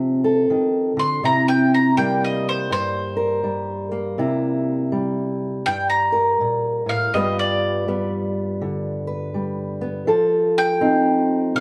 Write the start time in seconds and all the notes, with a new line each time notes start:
Already playing: C3 F3 C4
0.24 A4
0.50 D#3
0.97 D3 C6
1.23 C3 E4 A#5
1.48 G5
1.74 A#5
1.97 G3 A#3 G5
2.25 D#5
2.49 C5
2.71 G2 C5
3.17 A#4
3.44 G3
3.92 A#3
4.18 C3 E4
4.92 G3
5.66 G2 G5
5.90 A#5
6.12 A#4
6.40 A#2
6.86 A2 F5
7.14 G2 G3 B3 F4 B4 D#5
7.39 D5
7.88 G3 B3
8.61 D3
9.07 B4
9.34 G3
9.81 B3
10.07 F3 A4
10.58 G5
10.81 C4 D#4
11.55 C3 F5